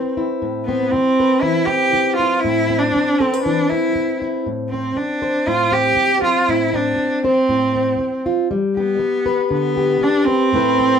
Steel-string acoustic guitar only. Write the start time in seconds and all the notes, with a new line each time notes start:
Already playing: C4 E4 B4
0.17 E4
0.42 A2
0.68 C4
0.93 muted steel-string acoustic guitar stroke
1.20 B4
1.43 E3
1.67 C4
1.93 muted steel-string acoustic guitar stroke
2.20 E4
2.44 A2
2.70 C4
2.95 muted steel-string acoustic guitar stroke
3.20 A4
3.34 B4
3.46 E3
3.72 C4
3.95 muted steel-string acoustic guitar stroke
4.22 E4
4.46 A2
4.73 C4
4.96 muted steel-string acoustic guitar stroke
5.22 C5
5.47 A2
5.72 C4
5.97 muted steel-string acoustic guitar stroke
6.22 C4
6.49 A2
6.74 C4
6.98 muted steel-string acoustic guitar stroke
7.25 C5
7.49 A2
7.76 C4
7.99 muted steel-string acoustic guitar stroke
8.26 F4
8.51 G3
8.77 G4
8.99 muted steel-string acoustic guitar stroke
9.26 B4
9.51 D3
9.77 G4
10.01 muted steel-string acoustic guitar stroke
10.28 B4
10.53 A2 A3 C4 E4 B4
10.80 C4